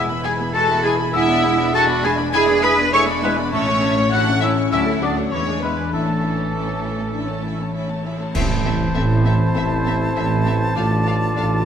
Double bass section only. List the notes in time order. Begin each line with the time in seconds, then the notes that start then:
Already playing: E1
3.54 A1
4.72 D2
5.32 E2
5.93 A1
8.35 A1
8.96 A1
9.56 A1
10.16 A1
10.77 A1
11.37 A1